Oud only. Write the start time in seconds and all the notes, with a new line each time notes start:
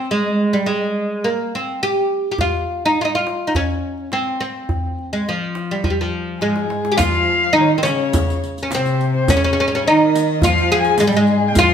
0.11 G#3
0.53 G3
0.66 G#3
1.24 A#3
1.55 C4
1.83 G4
2.31 G4
2.41 F4
2.85 D#4
3.01 D#4 F4
3.15 F4
3.47 D#4
3.56 C#4
4.13 C4
4.40 C4
5.13 G#3
5.29 F3
5.71 G3
5.84 F3
5.90 G3
6.01 F3
6.42 G#3
6.92 G4
6.98 F4
7.53 D#4
7.78 C4
7.83 C#4
8.63 C#4
8.75 C4
9.30 C#4
9.37 C#4
9.44 C#4
9.53 C#4
9.60 C#4
9.68 C#4
9.75 C#4
9.88 D#4
10.44 F4
10.72 G#4
11.00 G#3
11.07 G3
11.17 G#3
11.59 F4